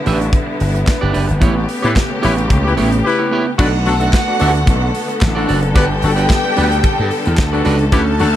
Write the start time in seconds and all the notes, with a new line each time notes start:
Already playing: D3 G3 B3 E4
0.06 A1 D4 G4 B4 E5, open hi-hat
0.20 muted clean electric guitar stroke, closed hi-hat
0.33 muted clean electric guitar stroke, kick, closed hi-hat
0.47 muted clean electric guitar stroke
0.60 G1, open hi-hat
0.74 muted clean electric guitar stroke, closed hi-hat
0.87 muted clean electric guitar stroke, kick, snare, clap, closed hi-hat
1.01 G1 D4 G4 B4 D5
1.13 F#1 D4 G4 B4 D5, open hi-hat
1.28 G1, muted clean electric guitar stroke, closed hi-hat
1.40 A1 C#3 A3 B3 E4 G4 C#5, kick, closed hi-hat
1.55 muted clean electric guitar stroke
1.68 muted clean electric guitar stroke, open hi-hat
1.82 A2 B3 E4 G4 B4 C#5, closed hi-hat
1.95 muted clean electric guitar stroke, kick, snare, clap, closed hi-hat
2.10 muted clean electric guitar stroke
2.21 A1 B3 E4 G4 B4 C#5, open hi-hat
2.37 muted clean electric guitar stroke, closed hi-hat
2.49 C#2, muted clean electric guitar stroke, kick, closed hi-hat
2.63 E4 G4 B4, muted clean electric guitar stroke
2.77 A1 B3 E4 G4 C#5, open hi-hat
2.91 muted clean electric guitar stroke, closed hi-hat
3.04 E4 G4 B4, muted clean electric guitar stroke
3.18 B3 E4 G4 C#5
3.31 B3 E4 G4 C#5
3.47 muted clean electric guitar stroke
3.58 B1 D3 A3 B3 D4 F#4 A4 B4 D5 F#5, kick, crash
3.73 muted clean electric guitar stroke
3.85 B1 D4 F#4 A4, muted clean electric guitar stroke, open hi-hat
4.00 D4 F#4 A4 E5, closed hi-hat
4.12 muted clean electric guitar stroke, kick, snare, clap, closed hi-hat
4.27 B3 D4 F#4, muted clean electric guitar stroke
4.39 D2 B3 D4 F#4 A4 E5, open hi-hat
4.54 muted clean electric guitar stroke, closed hi-hat
4.66 B1, muted clean electric guitar stroke, kick, closed hi-hat
4.81 muted clean electric guitar stroke
4.95 open hi-hat
5.08 muted clean electric guitar stroke, closed hi-hat
5.21 A1, muted clean electric guitar stroke, kick, snare, clap, closed hi-hat
5.35 D4 F#4 A4 D5
5.47 F#1 D4 F#4 A4 D5, open hi-hat
5.62 muted clean electric guitar stroke, closed hi-hat
5.74 G1 G3 B3 D4 F#4 G4 B4 D5 G5, kick, closed hi-hat
5.89 muted clean electric guitar stroke
6.02 G1 D4 F#4 A4, muted clean electric guitar stroke, open hi-hat
6.16 D4 F#4 B4 D5, closed hi-hat
6.30 muted clean electric guitar stroke, kick, snare, clap, closed hi-hat
6.44 B3 D4 G4, muted clean electric guitar stroke
6.56 D2 B3 D4 F#4 G4 B4 D5, open hi-hat
6.71 muted clean electric guitar stroke, closed hi-hat
6.84 muted clean electric guitar stroke, kick, closed hi-hat
6.98 G2, muted clean electric guitar stroke
7.11 open hi-hat
7.25 E2, muted clean electric guitar stroke, closed hi-hat
7.38 D2, muted clean electric guitar stroke, kick, snare, clap, closed hi-hat
7.52 D4 F#4 A4 B4 D5
7.64 C#2 D4 F#4 B4 D5, open hi-hat
7.79 muted clean electric guitar stroke, closed hi-hat
7.92 D2 A3 C#4 E4 F#4 G4 A4 B4 C#5 A5, kick, closed hi-hat
8.06 muted clean electric guitar stroke
8.19 D2 D4 F#4 A4, muted clean electric guitar stroke, open hi-hat
8.33 E5